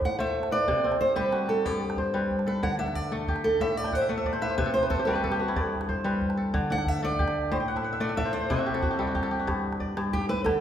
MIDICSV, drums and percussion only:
0, 0, Header, 1, 2, 480
1, 0, Start_track
1, 0, Key_signature, 1, "major"
1, 0, Tempo, 325910
1, 2429, Time_signature, 12, 3, 24, 8
1, 15618, End_track
2, 0, Start_track
2, 0, Title_t, "Calabash"
2, 27, Note_on_c, 9, 36, 57
2, 175, Note_off_c, 9, 36, 0
2, 513, Note_on_c, 9, 38, 18
2, 636, Note_off_c, 9, 38, 0
2, 636, Note_on_c, 9, 38, 47
2, 784, Note_off_c, 9, 38, 0
2, 997, Note_on_c, 9, 36, 62
2, 997, Note_on_c, 9, 38, 20
2, 1145, Note_off_c, 9, 36, 0
2, 1145, Note_off_c, 9, 38, 0
2, 1351, Note_on_c, 9, 38, 44
2, 1478, Note_on_c, 9, 36, 33
2, 1499, Note_off_c, 9, 38, 0
2, 1625, Note_off_c, 9, 36, 0
2, 1719, Note_on_c, 9, 36, 41
2, 1867, Note_off_c, 9, 36, 0
2, 1951, Note_on_c, 9, 38, 51
2, 2098, Note_off_c, 9, 38, 0
2, 2190, Note_on_c, 9, 38, 49
2, 2337, Note_off_c, 9, 38, 0
2, 2439, Note_on_c, 9, 36, 55
2, 2586, Note_off_c, 9, 36, 0
2, 2796, Note_on_c, 9, 38, 49
2, 2899, Note_on_c, 9, 36, 50
2, 2943, Note_off_c, 9, 38, 0
2, 3046, Note_off_c, 9, 36, 0
2, 3144, Note_on_c, 9, 38, 16
2, 3277, Note_off_c, 9, 38, 0
2, 3277, Note_on_c, 9, 38, 17
2, 3401, Note_on_c, 9, 36, 51
2, 3424, Note_off_c, 9, 38, 0
2, 3523, Note_on_c, 9, 38, 43
2, 3549, Note_off_c, 9, 36, 0
2, 3630, Note_off_c, 9, 38, 0
2, 3630, Note_on_c, 9, 38, 16
2, 3777, Note_off_c, 9, 38, 0
2, 3872, Note_on_c, 9, 36, 51
2, 4020, Note_off_c, 9, 36, 0
2, 4115, Note_on_c, 9, 38, 19
2, 4241, Note_off_c, 9, 38, 0
2, 4241, Note_on_c, 9, 38, 37
2, 4350, Note_on_c, 9, 36, 55
2, 4388, Note_off_c, 9, 38, 0
2, 4480, Note_on_c, 9, 38, 17
2, 4497, Note_off_c, 9, 36, 0
2, 4627, Note_off_c, 9, 38, 0
2, 4708, Note_on_c, 9, 38, 15
2, 4826, Note_on_c, 9, 36, 56
2, 4856, Note_off_c, 9, 38, 0
2, 4946, Note_on_c, 9, 38, 46
2, 4973, Note_off_c, 9, 36, 0
2, 5093, Note_off_c, 9, 38, 0
2, 5298, Note_on_c, 9, 36, 60
2, 5445, Note_off_c, 9, 36, 0
2, 5660, Note_on_c, 9, 38, 49
2, 5779, Note_on_c, 9, 36, 58
2, 5808, Note_off_c, 9, 38, 0
2, 5927, Note_off_c, 9, 36, 0
2, 6021, Note_on_c, 9, 38, 14
2, 6133, Note_off_c, 9, 38, 0
2, 6133, Note_on_c, 9, 38, 20
2, 6253, Note_on_c, 9, 36, 53
2, 6280, Note_off_c, 9, 38, 0
2, 6375, Note_on_c, 9, 38, 46
2, 6400, Note_off_c, 9, 36, 0
2, 6504, Note_off_c, 9, 38, 0
2, 6504, Note_on_c, 9, 38, 20
2, 6652, Note_off_c, 9, 38, 0
2, 6745, Note_on_c, 9, 36, 62
2, 6893, Note_off_c, 9, 36, 0
2, 6991, Note_on_c, 9, 38, 17
2, 7110, Note_off_c, 9, 38, 0
2, 7110, Note_on_c, 9, 38, 46
2, 7228, Note_on_c, 9, 36, 62
2, 7257, Note_off_c, 9, 38, 0
2, 7375, Note_off_c, 9, 36, 0
2, 7603, Note_on_c, 9, 38, 21
2, 7711, Note_off_c, 9, 38, 0
2, 7711, Note_on_c, 9, 36, 63
2, 7711, Note_on_c, 9, 38, 18
2, 7829, Note_off_c, 9, 38, 0
2, 7829, Note_on_c, 9, 38, 49
2, 7859, Note_off_c, 9, 36, 0
2, 7977, Note_off_c, 9, 38, 0
2, 8192, Note_on_c, 9, 36, 67
2, 8339, Note_off_c, 9, 36, 0
2, 8556, Note_on_c, 9, 38, 52
2, 8676, Note_on_c, 9, 36, 64
2, 8704, Note_off_c, 9, 38, 0
2, 8823, Note_off_c, 9, 36, 0
2, 8909, Note_on_c, 9, 38, 18
2, 9038, Note_off_c, 9, 38, 0
2, 9038, Note_on_c, 9, 38, 18
2, 9153, Note_on_c, 9, 36, 59
2, 9185, Note_off_c, 9, 38, 0
2, 9278, Note_on_c, 9, 38, 46
2, 9301, Note_off_c, 9, 36, 0
2, 9397, Note_off_c, 9, 38, 0
2, 9397, Note_on_c, 9, 38, 19
2, 9544, Note_off_c, 9, 38, 0
2, 9634, Note_on_c, 9, 36, 64
2, 9781, Note_off_c, 9, 36, 0
2, 9868, Note_on_c, 9, 38, 19
2, 9991, Note_off_c, 9, 38, 0
2, 9991, Note_on_c, 9, 38, 51
2, 10113, Note_on_c, 9, 36, 62
2, 10139, Note_off_c, 9, 38, 0
2, 10228, Note_on_c, 9, 38, 20
2, 10260, Note_off_c, 9, 36, 0
2, 10375, Note_off_c, 9, 38, 0
2, 10481, Note_on_c, 9, 38, 18
2, 10593, Note_off_c, 9, 38, 0
2, 10593, Note_on_c, 9, 36, 72
2, 10593, Note_on_c, 9, 38, 20
2, 10717, Note_off_c, 9, 38, 0
2, 10717, Note_on_c, 9, 38, 52
2, 10740, Note_off_c, 9, 36, 0
2, 10864, Note_off_c, 9, 38, 0
2, 11081, Note_on_c, 9, 36, 68
2, 11228, Note_off_c, 9, 36, 0
2, 11441, Note_on_c, 9, 38, 49
2, 11589, Note_off_c, 9, 38, 0
2, 11667, Note_on_c, 9, 38, 22
2, 11798, Note_off_c, 9, 38, 0
2, 11798, Note_on_c, 9, 38, 20
2, 11945, Note_off_c, 9, 38, 0
2, 12048, Note_on_c, 9, 36, 65
2, 12196, Note_off_c, 9, 36, 0
2, 12526, Note_on_c, 9, 36, 65
2, 12526, Note_on_c, 9, 38, 21
2, 12673, Note_off_c, 9, 36, 0
2, 12673, Note_off_c, 9, 38, 0
2, 12883, Note_on_c, 9, 38, 52
2, 12996, Note_on_c, 9, 36, 64
2, 13030, Note_off_c, 9, 38, 0
2, 13143, Note_off_c, 9, 36, 0
2, 13241, Note_on_c, 9, 38, 19
2, 13388, Note_off_c, 9, 38, 0
2, 13480, Note_on_c, 9, 36, 72
2, 13593, Note_on_c, 9, 38, 55
2, 13628, Note_off_c, 9, 36, 0
2, 13740, Note_off_c, 9, 38, 0
2, 13963, Note_on_c, 9, 36, 53
2, 13963, Note_on_c, 9, 38, 46
2, 14110, Note_off_c, 9, 36, 0
2, 14110, Note_off_c, 9, 38, 0
2, 14323, Note_on_c, 9, 38, 40
2, 14444, Note_on_c, 9, 36, 43
2, 14471, Note_off_c, 9, 38, 0
2, 14592, Note_off_c, 9, 36, 0
2, 14684, Note_on_c, 9, 38, 51
2, 14832, Note_off_c, 9, 38, 0
2, 14924, Note_on_c, 9, 36, 52
2, 14924, Note_on_c, 9, 38, 15
2, 15046, Note_off_c, 9, 38, 0
2, 15046, Note_on_c, 9, 38, 37
2, 15071, Note_off_c, 9, 36, 0
2, 15193, Note_off_c, 9, 38, 0
2, 15408, Note_on_c, 9, 36, 57
2, 15408, Note_on_c, 9, 38, 57
2, 15525, Note_off_c, 9, 38, 0
2, 15525, Note_on_c, 9, 38, 18
2, 15555, Note_off_c, 9, 36, 0
2, 15618, Note_off_c, 9, 38, 0
2, 15618, End_track
0, 0, End_of_file